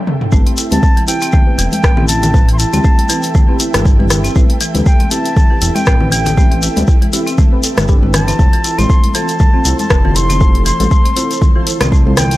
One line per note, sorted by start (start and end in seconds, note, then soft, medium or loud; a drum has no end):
0.00 0.28 C4 medium
0.00 0.28 A4 medium
0.00 0.28 E5 medium
0.00 0.28 G5 medium
0.07 mid tom medium
0.21 mid tom medium
0.32 0.41 A1 loud
0.32 0.45 A3 medium
0.32 0.68 C4 medium
0.32 0.68 E4 medium
0.32 0.68 G4 medium
0.32 12.37 A4 medium
0.32 0.68 B4 loud
0.32 8.35 E5 medium
0.32 8.35 G5 medium
0.32 kick loud
0.32 high conga medium
0.32 shekere soft
0.47 0.56 C4 medium
0.47 closed hi-hat soft
0.57 0.70 E4 medium
0.57 open hi-hat medium
0.57 shekere loud
0.71 0.79 D2 medium
0.71 0.93 C4 medium
0.71 0.93 E4 medium
0.71 0.93 G4 medium
0.71 0.93 B4 medium
0.71 1.07 A5 loud
0.71 closed hi-hat medium
0.71 high conga loud
0.71 shekere soft
0.83 kick loud
0.83 shekere soft
0.97 1.07 E3 medium
0.97 closed hi-hat soft
0.97 high conga medium
1.07 1.44 C4 medium
1.07 1.44 E4 medium
1.07 1.21 E4 medium
1.07 1.44 G4 medium
1.07 1.44 B4 medium
1.07 1.68 G5 loud
1.07 open hi-hat medium
1.07 shekere medium
1.21 1.32 C4 loud
1.21 closed hi-hat medium
1.21 shekere medium
1.32 1.46 A3 medium
1.32 kick loud
1.32 high conga medium
1.32 low conga loud
1.32 shekere soft
1.47 1.94 C4 medium
1.47 1.94 E4 medium
1.47 1.94 G4 medium
1.47 1.94 B4 medium
1.58 1.67 E1 medium
1.58 1.72 E3 loud
1.58 open hi-hat loud
1.58 shekere medium
1.72 2.06 G5 loud
1.72 closed hi-hat medium
1.72 high conga medium
1.72 shekere medium
1.83 2.65 A1 medium
1.83 1.96 A3 medium
1.83 kick loud
1.83 cross-stick medium
1.83 shekere soft
1.97 2.31 C4 medium
1.97 2.08 C4 medium
1.97 2.31 E4 medium
1.97 2.31 G4 medium
1.97 2.31 B4 loud
1.97 low conga loud
2.08 2.21 E4 medium
2.08 2.49 A5 loud
2.08 open hi-hat medium
2.08 shekere loud
2.23 closed hi-hat medium
2.23 low conga loud
2.23 shekere medium
2.33 2.70 C4 medium
2.33 2.70 E4 medium
2.33 2.70 G4 medium
2.33 2.70 B4 loud
2.33 kick loud
2.33 high conga medium
2.33 shekere soft
2.48 2.59 E3 medium
2.48 closed hi-hat soft
2.53 2.60 C6 medium
2.58 2.72 E4 medium
2.58 3.59 A5 loud
2.58 open hi-hat medium
2.58 shekere medium
2.73 2.80 D2 medium
2.73 2.95 C4 medium
2.73 2.83 C4 loud
2.73 2.95 E4 medium
2.73 2.95 G4 medium
2.73 2.95 B4 medium
2.73 closed hi-hat medium
2.73 high conga loud
2.73 shekere medium
2.84 2.98 A3 medium
2.84 kick loud
2.84 shekere soft
2.98 closed hi-hat soft
2.98 high conga medium
3.09 3.23 E3 loud
3.09 3.45 C4 medium
3.09 3.45 E4 medium
3.09 3.45 G4 medium
3.09 3.45 B4 medium
3.09 open hi-hat medium
3.09 shekere medium
3.22 closed hi-hat medium
3.22 shekere medium
3.34 3.48 A3 medium
3.34 kick loud
3.34 high conga medium
3.34 low conga medium
3.34 shekere soft
3.48 3.96 C4 medium
3.48 3.59 C4 medium
3.48 3.96 E4 medium
3.48 3.96 G4 medium
3.48 3.96 B4 loud
3.60 3.73 E4 medium
3.60 open hi-hat loud
3.60 shekere loud
3.74 4.29 G1 medium
3.74 cross-stick medium
3.74 closed hi-hat medium
3.74 high conga medium
3.74 low conga medium
3.74 shekere medium
3.85 kick loud
3.85 shekere soft
3.99 4.10 E3 medium
3.99 4.33 C4 medium
3.99 4.33 E4 medium
3.99 4.33 G4 medium
3.99 4.33 B4 loud
3.99 high conga loud
4.10 4.23 E4 medium
4.10 cross-stick medium
4.10 open hi-hat loud
4.10 low conga medium
4.10 shekere medium
4.24 4.34 C4 loud
4.24 closed hi-hat medium
4.24 shekere medium
4.35 4.45 A1 loud
4.35 4.49 A3 medium
4.35 4.72 C4 medium
4.35 4.71 E4 medium
4.35 4.71 G4 medium
4.35 4.71 B4 loud
4.35 kick loud
4.35 high conga medium
4.35 shekere soft
4.50 closed hi-hat soft
4.61 4.74 E3 loud
4.61 open hi-hat medium
4.61 shekere loud
4.75 4.82 D2 medium
4.75 4.96 C4 medium
4.75 4.97 E4 medium
4.75 4.97 G4 medium
4.75 4.96 B4 medium
4.75 closed hi-hat medium
4.75 high conga loud
4.75 shekere medium
4.86 4.99 A3 medium
4.86 5.12 G5 loud
4.86 kick loud
4.86 shekere soft
5.00 5.10 C4 medium
5.00 closed hi-hat soft
5.00 high conga medium
5.11 5.47 C4 medium
5.11 5.47 E4 medium
5.11 5.24 E4 medium
5.11 5.47 G4 medium
5.11 5.47 B4 medium
5.11 5.76 A5 loud
5.11 open hi-hat medium
5.11 shekere loud
5.25 closed hi-hat medium
5.25 shekere soft
5.36 kick loud
5.36 high conga medium
5.36 low conga medium
5.36 shekere soft
5.50 5.61 E3 medium
5.50 5.98 C4 medium
5.50 5.98 E4 medium
5.50 5.98 G4 medium
5.50 5.98 B4 loud
5.61 5.71 E1 medium
5.61 5.74 E4 medium
5.61 open hi-hat loud
5.61 shekere loud
5.75 5.86 C4 loud
5.75 6.11 G5 loud
5.75 closed hi-hat medium
5.75 high conga medium
5.75 shekere medium
5.86 6.68 A1 medium
5.86 6.00 A3 medium
5.86 kick loud
5.86 cross-stick loud
5.86 shekere soft
6.00 6.35 C4 medium
6.00 6.35 E4 medium
6.00 6.35 G4 medium
6.00 6.35 B4 loud
6.00 low conga loud
6.11 6.25 E3 loud
6.11 7.08 G5 loud
6.11 open hi-hat medium
6.11 shekere medium
6.26 closed hi-hat medium
6.26 low conga loud
6.26 shekere medium
6.37 6.50 A3 medium
6.37 6.73 C4 medium
6.37 6.73 E4 medium
6.37 6.73 G4 medium
6.37 6.73 B4 loud
6.37 kick loud
6.37 high conga medium
6.37 shekere soft
6.51 6.61 C4 medium
6.51 closed hi-hat soft
6.62 6.75 E4 medium
6.62 open hi-hat medium
6.62 shekere medium
6.76 6.84 D2 medium
6.76 6.98 C4 medium
6.76 6.98 E4 medium
6.76 6.98 G4 medium
6.76 6.98 B4 medium
6.76 closed hi-hat medium
6.76 high conga loud
6.76 shekere soft
6.87 kick loud
6.87 shekere soft
7.02 7.12 E3 medium
7.02 closed hi-hat soft
7.02 high conga medium
7.13 7.49 C4 medium
7.13 7.26 E4 medium
7.13 7.49 E4 medium
7.13 7.49 G4 medium
7.13 7.49 B4 medium
7.13 open hi-hat medium
7.13 shekere medium
7.27 7.37 C4 loud
7.27 closed hi-hat medium
7.27 shekere medium
7.38 7.52 A3 medium
7.38 kick loud
7.38 high conga medium
7.38 low conga medium
7.38 shekere soft
7.52 7.86 C4 medium
7.52 7.86 E4 medium
7.52 7.86 G4 medium
7.52 7.86 B4 medium
7.63 7.71 A4 medium
7.63 open hi-hat medium
7.63 shekere medium
7.77 8.33 G1 medium
7.77 cross-stick medium
7.77 closed hi-hat medium
7.77 high conga loud
7.77 low conga medium
7.77 shekere medium
7.88 7.99 C4 medium
7.88 8.02 D4 medium
7.88 7.99 E4 medium
7.88 7.99 G4 medium
7.88 7.99 B4 loud
7.88 kick loud
7.88 shekere soft
8.02 8.24 C4 medium
8.02 8.24 E4 medium
8.02 8.13 E4 medium
8.02 8.24 G4 medium
8.02 8.24 B4 loud
8.02 high conga loud
8.14 8.21 E3 loud
8.14 8.80 A5 loud
8.14 cross-stick medium
8.14 open hi-hat medium
8.14 low conga loud
8.14 shekere medium
8.28 8.37 C4 medium
8.28 8.34 C4 loud
8.28 8.37 E4 medium
8.28 8.37 G4 medium
8.28 8.37 B4 loud
8.28 closed hi-hat medium
8.28 shekere medium
8.39 8.48 F1 loud
8.39 8.75 C4 medium
8.39 8.75 F4 medium
8.39 8.75 A4 medium
8.39 8.75 C5 loud
8.39 12.37 C5 medium
8.39 12.37 C6 medium
8.39 kick loud
8.39 high conga medium
8.39 shekere soft
8.53 8.64 E3 medium
8.53 closed hi-hat soft
8.64 8.77 E4 medium
8.64 open hi-hat medium
8.64 shekere medium
8.78 8.85 A1 medium
8.78 9.00 C4 medium
8.78 8.88 C4 loud
8.78 9.00 F4 medium
8.78 9.00 A4 medium
8.78 9.00 C5 medium
8.78 9.16 C6 loud
8.78 closed hi-hat medium
8.78 high conga loud
8.78 shekere medium
8.90 9.03 A3 medium
8.90 kick loud
8.90 shekere soft
9.04 closed hi-hat soft
9.04 high conga medium
9.15 9.28 E3 loud
9.15 9.51 C4 medium
9.15 9.50 F4 medium
9.15 9.51 A4 medium
9.15 9.51 C5 medium
9.15 9.79 A5 loud
9.15 open hi-hat medium
9.15 shekere medium
9.28 closed hi-hat medium
9.28 shekere medium
9.39 9.52 A3 medium
9.39 kick loud
9.39 high conga medium
9.39 low conga medium
9.39 shekere soft
9.54 10.01 C4 medium
9.54 9.64 C4 medium
9.54 10.01 F4 medium
9.54 10.01 A4 medium
9.54 10.01 C5 loud
9.65 9.74 C2 medium
9.65 9.78 E4 medium
9.65 open hi-hat medium
9.65 shekere loud
9.79 10.17 A5 loud
9.79 closed hi-hat medium
9.79 high conga medium
9.79 shekere medium
9.90 10.72 F1 medium
9.90 kick loud
9.90 cross-stick loud
9.90 shekere soft
10.04 10.15 E3 medium
10.04 10.38 C4 medium
10.04 10.38 F4 medium
10.04 10.38 A4 medium
10.04 10.38 C5 loud
10.04 low conga loud
10.15 10.28 E4 medium
10.15 10.66 C6 loud
10.15 open hi-hat medium
10.15 shekere loud
10.29 10.39 C4 loud
10.29 closed hi-hat medium
10.29 low conga medium
10.29 shekere medium
10.40 10.54 A3 medium
10.40 10.76 C4 medium
10.40 10.76 F4 medium
10.40 10.76 A4 medium
10.40 10.76 C5 loud
10.40 kick loud
10.40 high conga medium
10.40 shekere soft
10.55 closed hi-hat soft
10.66 10.79 E3 loud
10.66 11.63 C6 loud
10.66 open hi-hat medium
10.66 shekere loud
10.80 10.87 A1 medium
10.80 11.02 C4 medium
10.80 11.02 F4 medium
10.80 11.02 A4 medium
10.80 11.02 C5 medium
10.80 closed hi-hat medium
10.80 high conga loud
10.80 shekere soft
10.91 11.04 A3 medium
10.91 kick loud
10.91 shekere soft
11.05 11.15 C4 medium
11.05 closed hi-hat soft
11.05 high conga medium
11.16 11.52 C4 medium
11.16 11.29 E4 medium
11.16 11.52 F4 medium
11.16 11.52 A4 medium
11.16 11.52 C5 medium
11.16 open hi-hat medium
11.16 shekere medium
11.31 closed hi-hat medium
11.31 shekere medium
11.41 kick loud
11.41 high conga medium
11.41 low conga medium
11.41 shekere soft
11.55 11.66 E3 medium
11.55 12.03 C4 medium
11.55 12.03 F4 medium
11.55 12.03 A4 medium
11.55 12.03 C5 loud
11.67 11.79 E4 medium
11.67 open hi-hat medium
11.67 shekere medium
11.81 12.36 C2 loud
11.81 11.91 C4 loud
11.81 cross-stick medium
11.81 closed hi-hat medium
11.81 high conga medium
11.81 low conga medium
11.81 shekere medium
11.92 12.05 A3 medium
11.92 kick loud
11.92 shekere soft
12.06 12.37 C4 medium
12.06 12.37 F4 medium
12.06 12.37 A4 medium
12.06 12.37 C5 loud
12.06 high conga loud
12.17 12.30 E3 loud
12.17 12.37 G5 loud
12.17 cross-stick medium
12.17 open hi-hat medium
12.17 low conga loud
12.17 shekere medium
12.31 closed hi-hat medium
12.31 shekere medium